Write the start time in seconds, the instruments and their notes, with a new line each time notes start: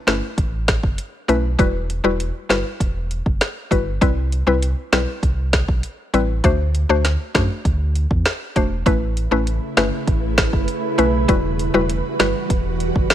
0.07 sub bass G1, synth pluck A3 C#4 E4 B4, cross-stick, snare, closed hi-hat
0.38 sub bass A1, kick, closed hi-hat
0.68 kick, cross-stick, snare, closed hi-hat
0.83 sub bass F#1, kick
0.98 closed hi-hat
1.28 sub bass B1, synth pluck A3 C#4 E4 B4, closed hi-hat
1.59 sub bass E1, synth pluck G3 E4 F#4 B4, kick, closed hi-hat
1.90 closed hi-hat
2.04 sub bass E1, synth pluck G3 E4 F#4 B4
2.20 closed hi-hat
2.49 sub bass G1, synth pluck G3 E4 F#4 B4, cross-stick, snare, closed hi-hat
2.80 sub bass E1, kick, closed hi-hat
3.11 closed hi-hat
3.26 sub bass F#1, kick
3.41 cross-stick, snare, closed hi-hat
3.71 sub bass G1, synth pluck G3 E4 F#4 B4, kick, closed hi-hat
4.01 sub bass C2, synth pluck G3 C4 E4 B4, kick, closed hi-hat
4.32 closed hi-hat
4.47 sub bass C2, synth pluck G3 C4 E4 B4
4.62 closed hi-hat
4.92 sub bass B1, synth pluck G3 C4 E4 B4, cross-stick, snare, closed hi-hat
5.23 sub bass C2, kick, closed hi-hat
5.53 kick, cross-stick, snare, closed hi-hat
5.68 sub bass B1, kick
5.83 closed hi-hat
6.14 sub bass A1, synth pluck G3 C4 E4 B4, closed hi-hat
6.44 sub bass D2, synth pluck A3 D4 F#4 C5, kick, closed hi-hat
6.75 closed hi-hat
6.89 sub bass D2, synth pluck A3 D4 F#4 C5
7.05 snare, closed hi-hat
7.35 sub bass F#2, synth pluck A3 D4 F#4 C5, kick, cross-stick, snare, closed hi-hat
7.65 sub bass D2, kick, closed hi-hat
7.95 closed hi-hat
8.11 sub bass E2, kick
8.25 cross-stick, snare, closed hi-hat
8.56 sub bass E1, synth pluck A3 D4 F#4 C5, kick, closed hi-hat
8.86 sub bass A1, ambient pad C#3 A3 E4 B4, synth pluck A3 C#4 E4 B4, kick, closed hi-hat
9.17 closed hi-hat
9.31 sub bass A1, synth pluck A3 C#4 E4 B4
9.47 closed hi-hat
9.77 sub bass G1, synth pluck A3 C#4 E4 B4, cross-stick, snare, closed hi-hat
10.07 sub bass A1, kick, closed hi-hat
10.38 kick, cross-stick, snare, closed hi-hat
10.53 sub bass F#1, kick
10.68 closed hi-hat
10.98 sub bass B1, synth pluck A3 C#4 E4 B4, closed hi-hat
11.28 sub bass E1, ambient pad E3 G3 F#4, synth pluck G3 E4 F#4 B4, kick, closed hi-hat
11.59 closed hi-hat
11.74 sub bass E1, synth pluck G3 E4 F#4 B4
11.90 closed hi-hat
12.19 sub bass G1, synth pluck G3 E4 F#4 B4, cross-stick, snare, closed hi-hat
12.50 sub bass E1, kick, closed hi-hat
12.80 closed hi-hat
12.96 sub bass F#1, kick
13.10 cross-stick, snare, closed hi-hat